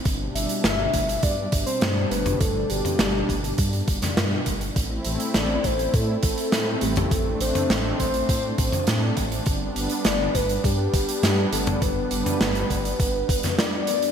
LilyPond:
<<
  \new Staff \with { instrumentName = "Soft synth lead" } { \time 4/4 \key g \mixolydian \tempo 4 = 102 r8 e''4. d''8. c''8. b'8 | a'8 g'4. r2 | r4 d''8 c''8 a'8 a'4 g'8 | a'8 c''4 c''4. r4 |
r4 d''8 b'8 g'4. a'8 | b'2. d''8 d''8 | }
  \new Staff \with { instrumentName = "Analog synth pad" } { \time 4/4 \key g \mixolydian << { d'1~ | d'1 | e'1 | d'1~ |
d'1~ | d'1 | } \\ { <b, g>1~ | <b, g>1 | <a c'>1~ | <a c'>1 |
<g b>1~ | <g b>1 | } >> }
  \new Staff \with { instrumentName = "Detuned saw bass" } { \clef bass \time 4/4 \key g \mixolydian g,,8 g,,8 g,,8 g,,8 g,8 g,,8 g,8 g,,8 | g,,8 g,,8 g,,8 g,,8 g,8 g,,8 g,8 g,,8 | a,,8 a,,8 a,,8 a,,8 a,8 a,,8 a,8 a,,8 | a,,8 a,,8 a,,8 a,,8 a,8 a,,8 a,8 a,,8 |
g,,8 g,,8 g,,8 g,,8 g,8 g,,8 g,8 g,,8 | g,,8 g,,8 g,,8 g,,8 g,,8 g,,8 r4 | }
  \new DrumStaff \with { instrumentName = "Drums" } \drummode { \time 4/4 <hh bd>8 hh16 hh16 <hh sn>8 <hh bd>16 hh16 <hh bd>8 <hh bd>16 hh16 <hh sn>8 hh16 <hh toml>16 | <hh bd>8 hh16 <hh toml>16 <hh sn>8 <hh bd>16 hh16 <hh bd>16 hh16 <hh bd>16 <hh sn toml>16 <hh sn>8 <hh bd>16 hh16 | <hh bd>8 hh16 hh16 <hh sn>8 <hh bd>16 hh16 <hh bd>8 <hh bd>16 hh16 <hh sn>8 hh16 <hh toml>16 | <hh bd>8 hh16 <hh toml>16 <hh sn>8 <hh bd>16 hh16 <hh bd>8 <hh bd>16 <hh toml>16 <hh sn>8 <hh bd>16 hh16 |
<hh bd>8 hh16 hh16 <hh sn>8 <hh bd>16 hh16 <hh bd>8 <hh bd>16 hh16 <hh sn>8 hh16 <hh toml>16 | <hh bd>8 hh16 <hh toml>16 <hh sn>16 hh16 <hh bd>16 hh16 <hh bd>8 <hh bd>16 <hh sn toml>16 <hh sn>8 hh16 hh16 | }
>>